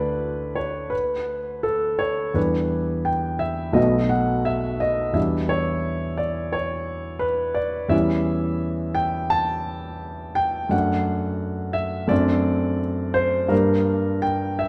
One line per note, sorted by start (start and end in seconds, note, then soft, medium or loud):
0.00 2.31 D2 soft
0.00 2.31 A3 soft
0.00 2.31 D4 soft
0.00 2.32 F#4 soft
0.00 0.56 B4 medium
0.00 0.95 D5 soft
0.56 0.92 C#5 soft
0.90 1.63 B4 medium
1.63 2.00 A4 medium
1.99 2.35 C#5 medium
2.34 3.72 E2 soft
2.34 3.72 G3 soft
2.34 3.72 D4 soft
2.34 3.73 G4 soft
2.34 3.07 B4 soft
3.05 3.41 G5 medium
3.39 3.75 E5 medium
3.73 5.10 B1 soft
3.73 5.11 A3 soft
3.73 5.11 B3 soft
3.73 5.12 F#4 soft
3.73 4.10 D#5 medium
4.09 4.45 F#5 medium
4.45 4.81 E5 medium
4.80 5.16 D#5 medium
5.13 7.87 E2 soft
5.13 7.87 G3 soft
5.13 7.88 D4 soft
5.13 7.88 E4 soft
5.13 5.49 E5 soft
5.49 6.19 C#5 medium
6.18 6.53 D5 medium
6.53 7.22 C#5 medium
7.19 7.56 B4 medium
7.55 7.91 D5 medium
7.88 10.67 E2 soft
7.88 10.67 G3 soft
7.88 10.67 C#4 soft
7.88 10.68 E4 soft
7.88 8.96 E5 medium
8.95 9.31 G5 medium
9.30 10.36 A5 medium
10.35 10.72 G5 medium
10.69 12.05 F#2 soft
10.69 12.05 A3 soft
10.69 12.06 D4 soft
10.69 11.75 F#5 medium
11.73 12.09 E5 medium
12.08 13.46 F#2 soft
12.08 13.46 A3 soft
12.08 13.46 C4 soft
12.08 13.47 D4 soft
12.08 12.80 D5 medium
13.14 13.50 C5 medium
13.48 14.68 G2 soft
13.48 14.68 G3 soft
13.48 14.68 A#3 soft
13.48 14.68 D4 soft
13.48 14.23 A#4 medium
14.22 14.60 G5 medium
14.59 14.68 E5 medium